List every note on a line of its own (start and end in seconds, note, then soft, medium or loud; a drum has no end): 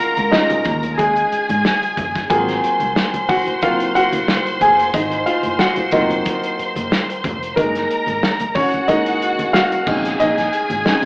0.00 0.32 G#3 medium
0.00 0.33 C#4 medium
0.00 0.29 F4 medium
0.00 2.32 F#4 medium
0.00 0.95 A#4 medium
0.00 2.32 F5 loud
0.00 2.32 F#5 loud
0.00 0.95 A#5 loud
0.00 closed hi-hat medium
0.17 0.31 C#2 medium
0.17 closed hi-hat medium
0.17 high conga medium
0.31 0.62 G#3 medium
0.31 0.62 C#4 soft
0.31 0.95 D#4 medium
0.31 0.62 F4 medium
0.31 1.00 D#5 medium
0.31 snare loud
0.31 muted conga soft
0.50 closed hi-hat medium
0.50 high conga medium
0.64 1.23 D#2 medium
0.64 kick loud
0.64 closed hi-hat medium
0.64 muted conga soft
0.64 low conga medium
0.83 closed hi-hat medium
0.83 high conga medium
0.97 1.94 G#3 medium
0.97 2.27 G#4 medium
0.97 1.93 G#4 medium
0.97 2.27 G#5 medium
0.97 kick medium
0.97 closed hi-hat medium
0.97 muted conga soft
1.17 closed hi-hat medium
1.32 muted fingered electric bass stroke soft
1.32 closed hi-hat medium
1.49 1.63 G#2 medium
1.49 closed hi-hat medium
1.49 high conga medium
1.65 snare loud
1.65 muted conga soft
1.83 closed hi-hat soft
1.97 2.26 F#1 medium
1.97 kick medium
1.97 closed hi-hat medium
1.97 muted conga soft
1.97 high conga medium
1.97 low conga medium
2.16 kick medium
2.16 snare soft
2.16 closed hi-hat medium
2.30 2.59 G#1 loud
2.30 3.25 F#3 medium
2.30 3.25 A#3 soft
2.30 3.25 C4 medium
2.30 3.25 F4 medium
2.30 3.25 G#4 medium
2.30 7.53 C5 medium
2.30 3.32 G#5 loud
2.30 7.53 C6 medium
2.30 kick loud
2.30 closed hi-hat medium
2.30 muted conga soft
2.30 low conga medium
2.48 snare soft
2.48 closed hi-hat medium
2.48 high conga soft
2.63 closed hi-hat medium
2.63 muted conga soft
2.80 2.94 C2 medium
2.80 closed hi-hat medium
2.80 high conga medium
2.96 snare loud
3.14 closed hi-hat medium
3.14 high conga medium
3.29 3.60 F#4 medium
3.29 3.63 F#5 loud
3.29 kick loud
3.29 open hi-hat medium
3.29 muted conga soft
3.29 low conga medium
3.47 closed hi-hat medium
3.47 high conga medium
3.62 3.92 F#3 medium
3.62 3.92 A#3 soft
3.62 3.92 C4 soft
3.62 3.92 F4 medium
3.62 3.96 F5 medium
3.62 kick medium
3.62 closed hi-hat medium
3.62 muted conga soft
3.80 closed hi-hat medium
3.95 4.57 F#4 medium
3.95 4.63 F#5 loud
3.95 closed hi-hat medium
3.95 muted conga soft
4.12 closed hi-hat medium
4.12 high conga medium
4.27 snare loud
4.27 muted conga soft
4.46 closed hi-hat soft
4.61 4.90 F#1 medium
4.61 4.92 G#4 medium
4.61 4.92 G#5 medium
4.61 closed hi-hat medium
4.61 muted conga soft
4.61 high conga medium
4.61 low conga medium
4.79 closed hi-hat medium
4.93 5.22 G#1 loud
4.93 5.25 D#4 medium
4.93 5.28 D#5 medium
4.93 kick loud
4.93 closed hi-hat medium
4.93 low conga medium
5.11 closed hi-hat soft
5.11 high conga soft
5.26 5.57 F4 medium
5.26 5.60 F5 medium
5.26 closed hi-hat medium
5.26 muted conga soft
5.43 5.58 F#1 medium
5.43 closed hi-hat medium
5.43 high conga medium
5.59 5.91 F#4 medium
5.59 5.93 F#5 loud
5.59 snare loud
5.76 closed hi-hat medium
5.76 high conga medium
5.91 6.21 F1 medium
5.91 7.53 F#3 medium
5.91 7.53 A#3 medium
5.91 7.53 C4 medium
5.91 7.20 D#4 medium
5.91 7.53 F4 medium
5.91 7.20 D#5 medium
5.91 kick loud
5.91 closed hi-hat medium
5.91 low conga medium
6.10 closed hi-hat medium
6.10 high conga medium
6.25 kick medium
6.25 closed hi-hat medium
6.25 muted conga soft
6.44 closed hi-hat medium
6.59 muted fingered electric bass stroke soft
6.59 closed hi-hat medium
6.76 6.90 F#1 medium
6.76 closed hi-hat medium
6.76 high conga medium
6.91 snare loud
6.91 muted conga soft
7.10 closed hi-hat soft
7.24 7.53 F1 medium
7.24 kick medium
7.24 closed hi-hat medium
7.24 muted conga soft
7.24 high conga medium
7.24 low conga medium
7.43 closed hi-hat medium
7.56 7.86 F#1 loud
7.56 8.51 G#3 medium
7.56 8.52 A#3 medium
7.56 8.52 D#4 medium
7.56 8.58 A#4 medium
7.56 8.53 A#4 medium
7.56 8.53 A#5 medium
7.56 kick loud
7.56 closed hi-hat medium
7.56 low conga medium
7.74 snare soft
7.74 closed hi-hat medium
7.74 high conga soft
7.90 closed hi-hat medium
8.07 8.21 G#1 medium
8.07 closed hi-hat medium
8.07 high conga medium
8.23 snare loud
8.40 closed hi-hat medium
8.40 high conga medium
8.55 8.87 C#4 medium
8.55 9.84 F#4 medium
8.55 8.86 C#5 medium
8.55 9.84 F#5 loud
8.55 kick loud
8.55 open hi-hat medium
8.55 low conga medium
8.74 closed hi-hat medium
8.74 high conga medium
8.88 9.18 G#3 medium
8.88 9.18 A#3 soft
8.88 9.51 D#4 medium
8.88 9.56 D#5 loud
8.88 kick medium
8.88 closed hi-hat medium
9.06 closed hi-hat medium
9.22 closed hi-hat medium
9.39 closed hi-hat medium
9.39 high conga medium
9.53 10.16 F#4 medium
9.53 10.22 F5 loud
9.53 snare loud
9.72 closed hi-hat medium
9.87 10.16 A#1 loud
9.87 10.82 G#3 medium
9.87 10.82 C4 soft
9.87 10.82 C#4 soft
9.87 10.20 D#4 medium
9.87 11.05 G#4 medium
9.87 11.05 G#5 medium
9.87 kick loud
9.87 crash medium
9.87 muted conga soft
9.87 high conga medium
9.87 low conga medium
10.05 snare soft
10.05 closed hi-hat medium
10.20 10.49 A#1 loud
10.20 10.84 D#4 medium
10.20 11.05 D#5 medium
10.20 closed hi-hat medium
10.20 muted conga soft
10.20 low conga medium
10.38 snare soft
10.38 closed hi-hat soft
10.38 high conga soft
10.53 closed hi-hat medium
10.70 10.84 G#1 medium
10.70 closed hi-hat medium
10.70 high conga medium
10.85 11.05 G#3 soft
10.85 11.05 C4 soft
10.85 11.05 C#4 soft
10.85 11.05 D#4 medium
10.85 snare loud
10.85 muted conga soft